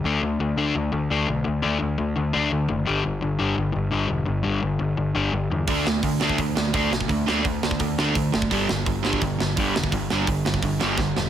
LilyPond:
<<
  \new Staff \with { instrumentName = "Overdriven electric guitar" } { \clef bass \time 4/4 \key g \lydian \tempo 4 = 170 <d a d'>8 <d a>8 <d a>8 <d a d'>8 <d a>8 <d a>8 <d a d'>8 <d a>8 | <d a>8 <d a d'>8 <d a>8 <d a>8 <d a>8 <d a d'>8 <d a>8 <d a>8 | <g, d g>8 <g, d>8 <g, d>8 <g, d g>8 <g, d>8 <g, d>8 <g, d g>8 <g, d>8 | <g, d>8 <g, d g>8 <g, d>8 <g, d>8 <g, d>8 <g, d g>8 <g, d>8 <g, d>8 |
<d a d'>8 <d a>8 <d a>8 <d a d'>8 <d a>8 <d a>8 <d a d'>8 <d a>8 | <d a>8 <d a d'>8 <d a>8 <d a>8 <d a>8 <d a d'>8 <d a>8 <d a>8 | <g, d g>8 <g, d>8 <g, d>8 <g, d g>8 <g, d>8 <g, d>8 <g, d g>8 <g, d>8 | <g, d>8 <g, d g>8 <g, d>8 <g, d>8 <g, d>8 <g, d g>8 <g, d>8 <g, d>8 | }
  \new Staff \with { instrumentName = "Overdriven electric guitar" } { \clef bass \time 4/4 \key g \lydian r1 | r1 | r1 | r1 |
<d a d'>8 <d a>8 <d a>8 <d a d'>8 <d a>8 <d a>8 <d a d'>8 <d a>8 | <d a>8 <d a d'>8 <d a>8 <d a>8 <d a>8 <d a d'>8 <d a>8 <d a>8 | <g, d g>8 <g, d>8 <g, d>8 <g, d g>8 <g, d>8 <g, d>8 <g, d g>8 <g, d>8 | <g, d>8 <g, d g>8 <g, d>8 <g, d>8 <g, d>8 <g, d g>8 <g, d>8 <g, d>8 | }
  \new Staff \with { instrumentName = "Picked electric bass" } { \clef bass \time 4/4 \key g \lydian d,8 d,8 d,8 d,8 d,8 d,8 d,8 b,,8 | d,8 d,8 d,8 d,8 d,8 d,8 d,8 fis,,8 | g,,8 g,,8 g,,8 g,,8 g,,8 g,,8 g,,8 e,,8 | g,,8 g,,8 g,,8 g,,8 g,,8 g,,8 g,,8 e,8 |
d,8 d,8 d,8 d,8 d,8 d,8 d,8 b,,8 | d,8 d,8 d,8 d,8 d,8 d,8 d,8 fis,,8 | g,,8 g,,8 g,,8 g,,8 g,,8 g,,8 g,,8 e,,8 | g,,8 g,,8 g,,8 g,,8 g,,8 g,,8 g,,8 e,,8 | }
  \new DrumStaff \with { instrumentName = "Drums" } \drummode { \time 4/4 r4 r4 r4 r4 | r4 r4 r4 r4 | r4 r4 r4 r4 | r4 r4 r4 r4 |
<hho bd>8 sn8 <hho bd>8 sn16 bd16 <hho bd>8 sn8 <hho bd>8 sn16 bd16 | <hho bd>8 sn8 <hho bd>8 sn16 bd16 <hho bd>8 sn8 <hho bd>8 sn16 bd16 | <hho bd>8 sn8 <hho bd>8 sn16 bd16 <hho bd>8 sn8 <hho bd>8 sn16 bd16 | <hho bd>8 sn8 <hho bd>8 sn16 bd16 <hho bd>8 sn8 <bd sn>8 sn8 | }
>>